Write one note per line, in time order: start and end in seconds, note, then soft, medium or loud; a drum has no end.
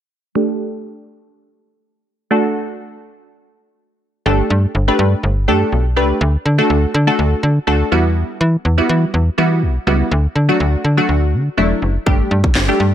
0.35 2.27 A3 medium
0.35 2.27 D4 medium
0.35 2.27 G4 medium
0.35 2.27 A4 medium
2.31 3.98 A3 medium
2.31 3.98 D4 medium
2.31 3.98 F#4 medium
2.31 3.99 A4 medium
4.26 4.42 G1 loud
4.26 4.72 A3 medium
4.26 4.72 D4 medium
4.26 4.72 G4 medium
4.26 4.72 A4 medium
4.50 4.66 G2 loud
4.75 4.91 G1 loud
4.88 5.33 A3 medium
4.88 5.33 D4 medium
4.88 5.33 G4 medium
4.88 5.34 B4 medium
4.99 5.15 G2 loud
5.23 5.49 G1 loud
5.48 5.64 G2 loud
5.48 5.85 A3 medium
5.48 5.85 D4 medium
5.48 5.85 G4 medium
5.48 5.85 A4 medium
5.72 5.98 B1 medium
5.96 6.13 C#2 medium
5.96 6.21 A3 medium
5.96 6.21 D4 medium
5.96 6.21 G4 medium
5.96 6.21 B4 medium
6.21 6.37 D2 loud
6.46 6.61 D3 medium
6.58 6.94 A3 medium
6.58 6.94 D4 medium
6.58 6.94 F#4 medium
6.58 6.94 A4 loud
6.70 6.86 D2 loud
6.94 7.10 D3 loud
7.07 7.53 A3 loud
7.07 7.53 D4 medium
7.07 7.53 F#4 medium
7.07 7.53 A4 loud
7.19 7.35 D2 loud
7.43 7.59 D3 loud
7.67 7.83 D2 medium
7.67 7.92 A3 medium
7.67 7.92 D4 medium
7.67 7.91 F#4 medium
7.67 7.92 A4 loud
7.92 8.24 E2 medium
7.92 8.60 G3 medium
7.92 8.60 B3 medium
7.92 8.60 E4 medium
7.92 8.61 F#4 loud
8.41 8.56 E3 loud
8.65 8.81 E2 loud
8.78 9.23 G3 medium
8.78 9.23 B3 medium
8.78 9.23 E4 medium
8.78 9.24 F#4 medium
8.89 9.05 E3 loud
9.14 9.30 E2 loud
9.38 9.64 E3 medium
9.38 9.75 G3 medium
9.38 9.75 B3 medium
9.38 9.75 E4 medium
9.38 9.76 F#4 medium
9.62 9.78 B1 medium
9.87 10.03 C#2 loud
9.87 10.11 G3 medium
9.87 10.11 B3 medium
9.87 10.11 E4 medium
9.87 10.12 F#4 medium
10.11 10.27 D2 loud
10.35 10.51 D3 medium
10.49 10.84 F#3 medium
10.49 10.85 A3 medium
10.49 10.85 D4 medium
10.49 10.85 F#4 loud
10.60 10.76 D2 loud
10.84 11.00 D3 medium
10.97 11.43 F#3 loud
10.97 11.43 A3 medium
10.97 11.43 D4 medium
10.97 11.43 F#4 loud
11.09 11.35 D2 medium
11.33 11.49 D3 loud
11.57 11.74 E1 medium
11.57 11.95 F#3 medium
11.57 11.95 A3 medium
11.57 11.95 D4 medium
11.57 11.95 E4 loud
11.82 11.98 F#1 medium
12.06 12.22 G1 loud
12.06 12.52 G3 medium
12.06 12.52 A3 medium
12.06 12.52 D4 medium
12.06 12.53 G4 medium
12.06 kick loud
12.31 12.47 G2 loud
12.44 kick medium
12.55 12.71 G1 loud
12.55 snare medium
12.55 clap loud
12.68 12.94 G3 medium
12.68 12.94 A3 medium
12.68 12.94 D4 medium
12.68 12.94 G4 medium
12.80 12.94 G2 loud